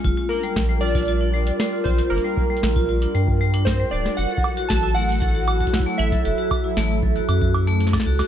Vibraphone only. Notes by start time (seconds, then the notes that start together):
0.05 F4
0.18 F4
0.30 D4
0.43 G3
0.69 G3
0.82 F4
0.95 F4
1.08 F4
1.21 D4
1.34 G3
1.60 G3
1.73 F4
1.86 F4
1.98 F4
2.11 D4
2.24 G3
2.50 G3
2.63 F4
2.76 F4
2.89 F4
3.02 D4
3.15 G3
3.41 G3
3.54 D4
3.67 A#4
3.80 G3
3.92 G3
4.05 D4
4.31 A4
4.44 F#4
4.57 F#4
4.70 F#4
4.83 E4
4.96 A3
5.22 A4
5.35 F#4
5.48 F#4
5.61 F#4
5.74 E4
5.86 A3
6.12 A4
6.25 F#4
6.38 F#4
6.51 F#4
6.64 E4
6.77 A3
7.03 A4
7.16 F#4
7.29 F#4
7.42 F#4
7.54 E4
7.67 A3
7.93 A4
8.06 F#4
8.19 F#4